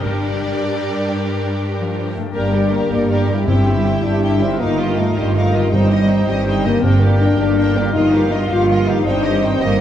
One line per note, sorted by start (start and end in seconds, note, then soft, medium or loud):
0.00 2.16 G2 soft
0.00 2.12 G2 soft
0.00 2.12 G3 soft
0.00 2.21 D4 soft
0.00 2.12 D4 soft
0.00 2.25 G4 soft
0.00 2.13 G4 soft
0.00 2.30 A#4 soft
0.04 0.40 G1 soft
0.04 2.13 A#4 soft
0.04 1.75 D5 medium
1.79 2.14 F3 medium
2.16 3.28 G2 soft
2.16 2.25 A3 soft
2.22 3.42 D4 soft
2.26 3.37 G4 soft
2.31 2.53 A#3 medium
2.31 2.53 G4 soft
2.31 3.47 A#4 soft
2.31 2.53 A#4 soft
2.31 3.43 D5 soft
2.35 2.85 G1 soft
2.35 2.86 G2 soft
2.35 2.89 G3 soft
2.35 2.89 D4 soft
2.35 4.56 G4 soft
2.35 2.54 A#4 soft
2.52 2.72 G3 medium
2.52 2.73 G4 soft
2.52 2.73 A#4 soft
2.52 2.73 D5 soft
2.70 2.91 A#3 medium
2.70 2.92 A#4 soft
2.74 2.93 G4 soft
2.91 3.42 G1 medium
2.91 3.41 G2 soft
2.91 3.47 G3 soft
2.91 3.29 A#3 medium
2.91 3.47 D4 soft
2.91 3.10 G4 soft
2.91 3.11 A#4 soft
2.91 3.11 D5 soft
3.09 3.28 G4 soft
3.09 3.27 A#4 soft
3.28 4.41 G2 soft
3.28 3.47 G3 medium
3.28 3.48 G4 soft
3.28 3.48 A#4 soft
3.28 3.48 D5 soft
3.34 4.54 E4 soft
3.38 5.62 G4 soft
3.46 3.97 G1 soft
3.46 3.97 G2 soft
3.46 4.00 G2 medium
3.46 4.58 G3 soft
3.46 3.83 C4 medium
3.46 3.65 E4 soft
3.46 4.60 E4 soft
3.46 3.64 G4 soft
3.46 4.60 E5 soft
3.46 3.65 G5 soft
3.66 3.86 E4 soft
3.66 3.85 G4 soft
3.66 3.85 E5 soft
3.84 3.93 C4 medium
3.84 4.04 E4 soft
3.84 4.04 G4 soft
3.84 4.04 G5 soft
4.03 4.54 G1 soft
4.03 4.53 G2 medium
4.03 4.41 D4 medium
4.03 4.23 E4 soft
4.03 4.22 G4 soft
4.03 4.23 E5 soft
4.22 4.40 E4 soft
4.22 4.40 G4 soft
4.22 4.40 G5 soft
4.41 5.53 G2 soft
4.41 4.60 C4 medium
4.41 4.60 E4 soft
4.41 4.60 G4 soft
4.41 4.60 E5 soft
4.47 5.57 D#4 soft
4.51 5.69 F4 soft
4.56 4.77 D#4 soft
4.56 5.76 F4 medium
4.56 5.71 A#4 soft
4.60 5.10 G1 soft
4.60 5.10 G2 soft
4.60 5.14 D#3 soft
4.60 4.97 A#3 medium
4.60 5.15 F4 soft
4.60 4.78 A#4 soft
4.60 6.52 D#5 soft
4.60 4.78 F5 soft
4.78 4.97 F4 soft
4.78 4.97 G4 soft
4.78 4.97 D#5 soft
4.97 5.16 A3 medium
4.97 5.16 D#4 soft
4.97 5.16 A#4 soft
4.97 5.16 F5 soft
5.15 5.66 G1 medium
5.15 5.66 G2 soft
5.15 5.69 D#3 soft
5.15 5.35 G3 medium
5.15 5.71 F4 soft
5.15 5.35 F4 soft
5.15 5.35 G4 soft
5.15 5.34 D#5 soft
5.33 5.52 A3 medium
5.33 5.52 D#4 soft
5.33 5.51 F5 soft
5.37 5.53 A#4 soft
5.53 6.63 G2 soft
5.53 5.72 A#3 medium
5.53 5.72 F4 soft
5.53 5.73 G4 soft
5.53 5.72 D#5 soft
5.58 6.78 D#4 soft
5.63 6.73 G4 soft
5.67 6.26 D#3 soft
5.67 6.25 C4 soft
5.67 6.83 C5 soft
5.67 5.89 G5 soft
5.72 6.22 G1 soft
5.72 6.22 G2 medium
5.72 6.24 G2 medium
5.72 6.26 G3 medium
5.72 5.89 D#4 soft
5.72 5.90 C5 soft
5.72 6.82 C5 soft
5.90 6.09 G4 soft
5.90 6.09 D#5 soft
5.90 6.10 D#5 soft
6.09 6.28 D#4 soft
6.09 6.28 C5 soft
6.09 6.28 G5 soft
6.26 6.77 G1 medium
6.26 6.77 G2 medium
6.26 6.82 D#3 soft
6.26 6.65 G3 medium
6.26 6.82 C4 soft
6.26 6.47 G4 soft
6.26 6.46 D#5 soft
6.26 6.47 D#5 soft
6.46 6.64 D#4 soft
6.46 6.64 C5 soft
6.46 6.64 G5 soft
6.64 7.76 G2 soft
6.64 6.84 A#3 medium
6.64 6.84 G4 soft
6.64 6.83 D#5 soft
6.64 6.84 D#5 soft
6.69 7.89 D4 soft
6.74 7.85 G4 soft
6.78 7.01 C4 medium
6.78 7.89 A#4 soft
6.83 7.33 G1 medium
6.83 7.33 G2 medium
6.83 7.35 G2 medium
6.83 7.38 D3 soft
6.83 7.38 A#3 soft
6.83 7.01 D4 soft
6.83 8.74 A#4 medium
6.83 7.01 A#4 soft
6.83 7.92 D5 soft
6.83 7.01 G5 soft
7.01 7.20 A#3 medium
7.01 7.21 G4 soft
7.01 7.21 D5 soft
7.20 7.38 D4 medium
7.20 7.39 D4 soft
7.20 7.40 A#4 soft
7.20 7.39 G5 soft
7.38 7.88 G1 medium
7.38 7.89 G2 medium
7.38 7.94 D3 medium
7.38 7.94 A#3 medium
7.38 7.76 D4 medium
7.38 7.57 G4 soft
7.38 7.58 G4 soft
7.38 7.58 D5 soft
7.57 7.75 D4 soft
7.57 7.76 A#4 soft
7.57 7.75 G5 soft
7.76 8.87 G2 medium
7.76 7.95 A#3 medium
7.76 7.95 G4 soft
7.76 7.95 D5 soft
7.81 9.00 F4 soft
7.86 8.96 G4 soft
7.90 8.30 D#4 medium
7.90 8.11 F4 soft
7.90 9.05 A#4 soft
7.95 8.44 G1 medium
7.95 8.47 G2 medium
7.95 8.44 G2 medium
7.95 8.35 F3 medium
7.95 8.35 A#3 medium
7.95 8.12 A#4 soft
7.95 8.13 D#5 soft
7.95 9.06 F5 medium
8.12 8.33 F4 soft
8.12 8.31 G4 soft
8.12 8.32 F5 soft
8.31 8.40 D#4 medium
8.31 8.50 F4 soft
8.31 8.51 A#4 soft
8.31 8.51 D#5 soft
8.50 9.00 G1 medium
8.50 9.00 G2 medium
8.50 9.06 F3 medium
8.50 9.05 A#3 soft
8.50 8.69 F4 soft
8.50 8.87 F4 medium
8.50 8.69 G4 soft
8.50 8.70 F5 soft
8.69 8.86 F4 soft
8.69 8.87 A#4 soft
8.69 8.87 D#5 soft
8.87 9.81 G2 medium
8.87 9.06 D#4 medium
8.87 9.07 F4 soft
8.87 9.06 G4 medium
8.87 9.06 F5 medium
8.92 9.81 D#4 soft
8.97 9.81 G4 soft
9.01 9.81 C5 soft
9.01 9.23 C5 medium
9.05 9.55 G1 medium
9.05 9.55 G2 medium
9.05 9.81 D#3 medium
9.05 9.81 C4 medium
9.05 9.43 D4 medium
9.05 9.23 D#4 medium
9.05 9.81 C5 medium
9.05 9.81 D#5 medium
9.05 9.24 G5 soft
9.23 9.42 G4 soft
9.23 9.43 D#5 soft
9.43 9.61 C4 medium
9.43 9.62 D#4 soft
9.43 9.62 C5 soft
9.43 9.62 G5 soft
9.61 9.81 G1 medium
9.61 9.81 G2 medium
9.61 9.80 A#3 medium
9.61 9.80 G4 medium
9.61 9.80 D#5 medium